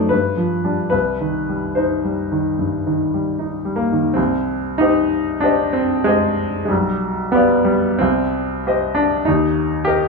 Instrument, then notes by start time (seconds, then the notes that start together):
grand piano
Already playing: F#2 F#3 A3 D#4 C5 D5
0.09 G2 B4
0.37 F3
0.64 G3 D4
0.90 C2 B4
1.21 D#3
1.49 G3
1.75 D#4 C5
2.04 G3
2.32 D#3
2.59 G2
2.87 D#3
3.14 G3
3.39 D#4
3.65 G3
3.76 A#3
3.92 D#3
4.14 C2 C4
4.78 D#4 G4 C5 D#5
5.40 D4 G4 C5 D#5
5.73 C4
6.04 G#3 G4 C5 D#5
6.65 G3 G#3
6.70 B1
7.32 B3 G4 D5 F5
7.65 G3
7.99 C2 C4
8.67 G4 C5 D#5
8.95 D4
9.25 D#2 D#4
9.85 G4 A#4 D#5